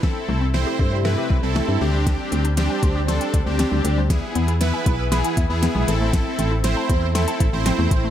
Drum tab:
HH |----------------|x-xxx-x-xxx-x-x-|x-xxx-x-xxx-x-x-|x-x-x-x-xxx-x-x-|
SD |o---o---o---o---|o---o---o---o---|o---o---o---o---|o---o---o---o---|
BD |o-----o---o-----|o-----o---o-----|o-----o---o-----|o-----o---o---o-|